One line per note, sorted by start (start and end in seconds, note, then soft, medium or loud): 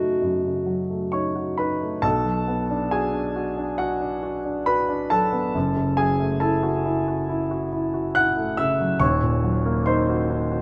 0.00 0.17 F#2 soft
0.00 0.44 C#3 soft
0.00 0.66 F#3 soft
0.00 0.90 A3 soft
0.00 1.13 D#4 soft
0.00 1.35 F#4 soft
0.00 1.55 F#4 medium
0.22 2.01 F#2 soft
0.44 0.81 C#3 soft
0.66 1.03 F#3 soft
0.90 1.26 A3 soft
1.12 1.49 D#4 soft
1.12 1.56 C#5 soft
1.12 1.58 C#6 medium
1.35 1.73 F#4 soft
1.58 1.95 D#4 soft
1.58 2.01 B4 soft
1.58 2.04 B5 medium
1.81 2.04 A3 soft
2.02 5.50 B1 soft
2.02 5.51 B2 medium
2.02 2.89 A4 medium
2.02 2.92 A5 medium
2.25 2.61 F#3 soft
2.48 2.84 B3 soft
2.70 3.06 D4 soft
2.91 3.28 F#4 soft
2.91 3.76 G#4 medium
2.91 3.80 G#5 medium
3.14 3.49 D4 soft
3.36 3.71 F#4 soft
3.58 3.93 D4 soft
3.78 4.21 F#4 medium
3.78 4.67 F#5 medium
4.01 4.37 D4 soft
4.23 4.59 F#4 soft
4.45 4.81 D4 soft
4.66 5.02 F#4 soft
4.66 5.08 B4 medium
4.66 5.11 B5 medium
4.89 5.24 D4 soft
5.10 5.46 F#3 soft
5.10 5.94 A4 medium
5.10 5.98 A5 medium
5.33 5.55 B3 soft
5.54 8.97 F#1 soft
5.54 8.97 F#2 medium
5.77 6.11 C#3 soft
5.97 6.33 F#3 soft
5.97 6.38 G#4 medium
5.97 6.41 G#5 medium
6.20 6.55 A3 soft
6.40 6.76 E4 soft
6.40 7.68 A4 soft
6.40 7.71 A5 medium
6.63 6.98 F#4 soft
6.85 7.20 E4 soft
7.08 7.42 F#4 soft
7.29 7.64 E4 soft
7.51 7.85 F#4 soft
7.72 8.07 E4 soft
7.94 8.28 F#4 soft
8.15 8.50 E4 soft
8.15 8.56 F#5 medium
8.15 8.58 F#6 medium
8.37 8.71 A3 soft
8.57 8.93 C#3 soft
8.57 8.98 E5 medium
8.57 9.01 E6 medium
8.80 9.02 F#3 soft
9.00 10.62 D#1 medium
9.00 10.62 D#2 medium
9.00 9.83 C#5 medium
9.00 9.86 C#6 medium
9.22 9.57 A#2 soft
9.43 9.78 F#3 soft
9.66 10.00 A#3 soft
9.86 10.22 D#4 soft
9.86 10.62 C5 medium
9.86 10.62 C6 medium
10.09 10.44 F#4 soft
10.30 10.62 D#4 soft
10.52 10.62 F#4 soft